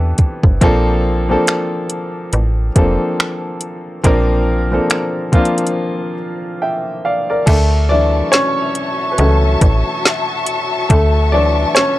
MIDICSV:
0, 0, Header, 1, 5, 480
1, 0, Start_track
1, 0, Tempo, 857143
1, 344, Time_signature, 4, 2, 24, 8
1, 6713, End_track
2, 0, Start_track
2, 0, Title_t, "String section"
2, 0, Program_c, 0, 48
2, 4184, Note_on_c, 0, 66, 69
2, 4184, Note_on_c, 0, 76, 63
2, 4184, Note_on_c, 0, 81, 81
2, 4184, Note_on_c, 0, 85, 67
2, 6713, Note_off_c, 0, 66, 0
2, 6713, Note_off_c, 0, 76, 0
2, 6713, Note_off_c, 0, 81, 0
2, 6713, Note_off_c, 0, 85, 0
2, 6713, End_track
3, 0, Start_track
3, 0, Title_t, "Grand piano"
3, 0, Program_c, 1, 0
3, 0, Control_c, 1, 64, 127
3, 0, Note_on_c, 1, 52, 83
3, 0, Note_on_c, 1, 59, 75
3, 0, Note_on_c, 1, 60, 75
3, 0, Note_on_c, 1, 62, 74
3, 0, Note_on_c, 1, 67, 90
3, 0, Note_on_c, 1, 69, 87
3, 302, Note_off_c, 1, 52, 0
3, 304, Note_off_c, 1, 59, 0
3, 305, Note_off_c, 1, 60, 0
3, 307, Note_off_c, 1, 62, 0
3, 309, Note_off_c, 1, 69, 0
3, 342, Note_on_c, 1, 53, 107
3, 345, Note_on_c, 1, 58, 101
3, 349, Note_on_c, 1, 60, 98
3, 351, Control_c, 1, 64, 0
3, 353, Note_off_c, 1, 67, 0
3, 353, Note_on_c, 1, 62, 90
3, 356, Note_on_c, 1, 69, 116
3, 454, Control_c, 1, 64, 127
3, 694, Note_off_c, 1, 53, 0
3, 696, Note_off_c, 1, 58, 0
3, 698, Note_off_c, 1, 60, 0
3, 699, Note_off_c, 1, 62, 0
3, 701, Note_off_c, 1, 69, 0
3, 722, Note_on_c, 1, 53, 84
3, 725, Note_on_c, 1, 58, 75
3, 728, Note_on_c, 1, 60, 73
3, 732, Note_on_c, 1, 62, 74
3, 736, Note_on_c, 1, 69, 93
3, 1496, Note_off_c, 1, 53, 0
3, 1497, Note_off_c, 1, 58, 0
3, 1499, Note_off_c, 1, 60, 0
3, 1501, Note_off_c, 1, 62, 0
3, 1503, Note_off_c, 1, 69, 0
3, 1542, Note_on_c, 1, 53, 79
3, 1545, Note_on_c, 1, 58, 73
3, 1548, Note_on_c, 1, 60, 75
3, 1552, Note_on_c, 1, 62, 72
3, 1555, Note_on_c, 1, 69, 90
3, 2222, Note_off_c, 1, 53, 0
3, 2224, Note_off_c, 1, 58, 0
3, 2225, Note_off_c, 1, 60, 0
3, 2227, Note_off_c, 1, 62, 0
3, 2229, Note_off_c, 1, 69, 0
3, 2259, Note_on_c, 1, 53, 99
3, 2263, Note_on_c, 1, 58, 91
3, 2266, Note_on_c, 1, 60, 95
3, 2269, Note_on_c, 1, 62, 98
3, 2273, Note_on_c, 1, 70, 113
3, 2613, Note_off_c, 1, 53, 0
3, 2615, Note_off_c, 1, 58, 0
3, 2616, Note_off_c, 1, 60, 0
3, 2618, Note_off_c, 1, 62, 0
3, 2620, Note_off_c, 1, 70, 0
3, 2639, Note_on_c, 1, 53, 70
3, 2643, Note_on_c, 1, 58, 67
3, 2646, Note_on_c, 1, 60, 70
3, 2649, Note_on_c, 1, 62, 71
3, 2653, Note_on_c, 1, 69, 79
3, 2962, Note_off_c, 1, 53, 0
3, 2964, Note_off_c, 1, 58, 0
3, 2965, Note_off_c, 1, 60, 0
3, 2967, Note_off_c, 1, 62, 0
3, 2969, Note_off_c, 1, 69, 0
3, 2979, Note_on_c, 1, 53, 86
3, 2983, Note_on_c, 1, 58, 77
3, 2986, Note_on_c, 1, 60, 78
3, 2990, Note_on_c, 1, 62, 78
3, 2994, Note_on_c, 1, 65, 94
3, 3435, Note_off_c, 1, 53, 0
3, 3437, Note_off_c, 1, 58, 0
3, 3438, Note_off_c, 1, 60, 0
3, 3440, Note_off_c, 1, 62, 0
3, 3442, Note_off_c, 1, 65, 0
3, 3707, Note_on_c, 1, 79, 64
3, 3711, Note_on_c, 1, 76, 57
3, 3934, Note_off_c, 1, 79, 0
3, 3936, Note_off_c, 1, 76, 0
3, 3948, Note_on_c, 1, 77, 70
3, 3951, Note_on_c, 1, 74, 61
3, 4079, Note_off_c, 1, 74, 0
3, 4079, Note_off_c, 1, 77, 0
3, 4087, Note_on_c, 1, 74, 70
3, 4091, Note_on_c, 1, 70, 57
3, 4179, Note_on_c, 1, 69, 93
3, 4192, Note_on_c, 1, 57, 71
3, 4193, Control_c, 1, 64, 0
3, 4277, Control_c, 1, 64, 127
3, 4314, Note_off_c, 1, 74, 0
3, 4316, Note_off_c, 1, 70, 0
3, 4412, Note_off_c, 1, 57, 0
3, 4420, Note_on_c, 1, 74, 94
3, 4425, Note_on_c, 1, 52, 52
3, 4428, Note_on_c, 1, 54, 46
3, 4429, Note_off_c, 1, 69, 0
3, 4432, Note_on_c, 1, 62, 71
3, 4432, Note_on_c, 1, 64, 58
3, 4645, Note_off_c, 1, 74, 0
3, 4652, Note_off_c, 1, 62, 0
3, 4658, Note_on_c, 1, 73, 104
3, 4670, Note_on_c, 1, 61, 83
3, 5092, Note_off_c, 1, 61, 0
3, 5105, Note_on_c, 1, 71, 56
3, 5122, Note_off_c, 1, 73, 0
3, 5137, Note_off_c, 1, 52, 0
3, 5140, Note_off_c, 1, 54, 0
3, 5140, Note_on_c, 1, 69, 74
3, 5141, Note_off_c, 1, 71, 0
3, 5146, Note_on_c, 1, 52, 48
3, 5149, Note_on_c, 1, 54, 47
3, 5151, Note_on_c, 1, 61, 52
3, 5153, Note_on_c, 1, 57, 62
3, 5363, Note_off_c, 1, 52, 0
3, 5364, Note_off_c, 1, 54, 0
3, 5365, Note_off_c, 1, 61, 0
3, 5840, Note_off_c, 1, 69, 0
3, 5846, Note_off_c, 1, 57, 0
3, 6100, Note_on_c, 1, 69, 86
3, 6112, Note_on_c, 1, 57, 69
3, 6326, Note_off_c, 1, 64, 0
3, 6332, Note_off_c, 1, 57, 0
3, 6341, Note_on_c, 1, 74, 91
3, 6347, Note_on_c, 1, 52, 52
3, 6350, Note_off_c, 1, 69, 0
3, 6350, Note_on_c, 1, 54, 49
3, 6353, Note_on_c, 1, 73, 55
3, 6355, Note_on_c, 1, 62, 74
3, 6570, Note_off_c, 1, 73, 0
3, 6573, Note_off_c, 1, 62, 0
3, 6578, Note_on_c, 1, 73, 106
3, 6590, Note_off_c, 1, 74, 0
3, 6592, Note_on_c, 1, 61, 82
3, 6680, Note_off_c, 1, 52, 0
3, 6681, Note_off_c, 1, 54, 0
3, 6713, Note_off_c, 1, 61, 0
3, 6713, Note_off_c, 1, 73, 0
3, 6713, End_track
4, 0, Start_track
4, 0, Title_t, "FM bass"
4, 0, Program_c, 2, 39
4, 0, Note_on_c, 2, 40, 91
4, 77, Note_off_c, 2, 40, 0
4, 245, Note_on_c, 2, 31, 84
4, 333, Note_off_c, 2, 31, 0
4, 346, Note_on_c, 2, 34, 102
4, 768, Note_off_c, 2, 34, 0
4, 1306, Note_on_c, 2, 33, 93
4, 1516, Note_off_c, 2, 33, 0
4, 1545, Note_on_c, 2, 29, 95
4, 1667, Note_off_c, 2, 29, 0
4, 2264, Note_on_c, 2, 34, 103
4, 2686, Note_off_c, 2, 34, 0
4, 4184, Note_on_c, 2, 38, 109
4, 4607, Note_off_c, 2, 38, 0
4, 5145, Note_on_c, 2, 37, 96
4, 5356, Note_off_c, 2, 37, 0
4, 5384, Note_on_c, 2, 33, 98
4, 5507, Note_off_c, 2, 33, 0
4, 6104, Note_on_c, 2, 38, 106
4, 6527, Note_off_c, 2, 38, 0
4, 6713, End_track
5, 0, Start_track
5, 0, Title_t, "Drums"
5, 101, Note_on_c, 9, 42, 65
5, 105, Note_on_c, 9, 36, 88
5, 157, Note_off_c, 9, 42, 0
5, 161, Note_off_c, 9, 36, 0
5, 244, Note_on_c, 9, 36, 109
5, 300, Note_off_c, 9, 36, 0
5, 345, Note_on_c, 9, 36, 105
5, 345, Note_on_c, 9, 42, 73
5, 401, Note_off_c, 9, 36, 0
5, 401, Note_off_c, 9, 42, 0
5, 825, Note_on_c, 9, 42, 67
5, 830, Note_on_c, 9, 26, 100
5, 881, Note_off_c, 9, 42, 0
5, 886, Note_off_c, 9, 26, 0
5, 1061, Note_on_c, 9, 42, 59
5, 1117, Note_off_c, 9, 42, 0
5, 1302, Note_on_c, 9, 42, 61
5, 1358, Note_off_c, 9, 42, 0
5, 1544, Note_on_c, 9, 36, 91
5, 1544, Note_on_c, 9, 42, 77
5, 1600, Note_off_c, 9, 36, 0
5, 1600, Note_off_c, 9, 42, 0
5, 1791, Note_on_c, 9, 26, 112
5, 1847, Note_off_c, 9, 26, 0
5, 2019, Note_on_c, 9, 42, 67
5, 2075, Note_off_c, 9, 42, 0
5, 2263, Note_on_c, 9, 36, 104
5, 2263, Note_on_c, 9, 42, 75
5, 2319, Note_off_c, 9, 36, 0
5, 2319, Note_off_c, 9, 42, 0
5, 2743, Note_on_c, 9, 42, 67
5, 2748, Note_on_c, 9, 26, 102
5, 2799, Note_off_c, 9, 42, 0
5, 2804, Note_off_c, 9, 26, 0
5, 2983, Note_on_c, 9, 42, 35
5, 2984, Note_on_c, 9, 36, 90
5, 3039, Note_off_c, 9, 42, 0
5, 3040, Note_off_c, 9, 36, 0
5, 3053, Note_on_c, 9, 42, 45
5, 3109, Note_off_c, 9, 42, 0
5, 3123, Note_on_c, 9, 42, 52
5, 3173, Note_off_c, 9, 42, 0
5, 3173, Note_on_c, 9, 42, 61
5, 3229, Note_off_c, 9, 42, 0
5, 4184, Note_on_c, 9, 36, 105
5, 4184, Note_on_c, 9, 42, 71
5, 4184, Note_on_c, 9, 49, 91
5, 4240, Note_off_c, 9, 36, 0
5, 4240, Note_off_c, 9, 42, 0
5, 4240, Note_off_c, 9, 49, 0
5, 4663, Note_on_c, 9, 42, 70
5, 4668, Note_on_c, 9, 38, 103
5, 4719, Note_off_c, 9, 42, 0
5, 4724, Note_off_c, 9, 38, 0
5, 4900, Note_on_c, 9, 42, 60
5, 4956, Note_off_c, 9, 42, 0
5, 5142, Note_on_c, 9, 42, 64
5, 5198, Note_off_c, 9, 42, 0
5, 5384, Note_on_c, 9, 36, 81
5, 5384, Note_on_c, 9, 42, 78
5, 5440, Note_off_c, 9, 36, 0
5, 5440, Note_off_c, 9, 42, 0
5, 5631, Note_on_c, 9, 38, 120
5, 5687, Note_off_c, 9, 38, 0
5, 5860, Note_on_c, 9, 42, 67
5, 5916, Note_off_c, 9, 42, 0
5, 6104, Note_on_c, 9, 36, 106
5, 6104, Note_on_c, 9, 42, 72
5, 6160, Note_off_c, 9, 36, 0
5, 6160, Note_off_c, 9, 42, 0
5, 6584, Note_on_c, 9, 42, 65
5, 6589, Note_on_c, 9, 38, 99
5, 6640, Note_off_c, 9, 42, 0
5, 6645, Note_off_c, 9, 38, 0
5, 6713, End_track
0, 0, End_of_file